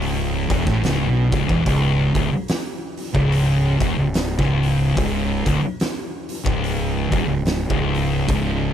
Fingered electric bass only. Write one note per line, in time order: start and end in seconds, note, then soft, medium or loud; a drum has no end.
0.00 0.46 C#1 loud
0.50 0.66 E1 loud
0.67 0.82 A1 loud
0.84 1.06 C#1 loud
1.09 1.31 B1 medium
1.33 1.48 C#1 medium
1.49 1.65 E1 loud
1.66 2.12 C#1 medium
2.15 2.31 D1 medium
2.34 muted fingered electric bass stroke soft
3.15 3.76 C#1 loud
3.81 3.96 E1 loud
3.98 4.36 C#1 medium
4.39 4.93 C#1 loud
4.97 5.42 C#1 medium
5.46 5.62 D1 medium
5.63 muted fingered electric bass stroke soft
6.46 7.08 C#1 loud
7.12 7.27 E1 medium
7.27 7.67 C#1 medium
7.70 8.25 C#1 loud
8.28 8.73 C#1 medium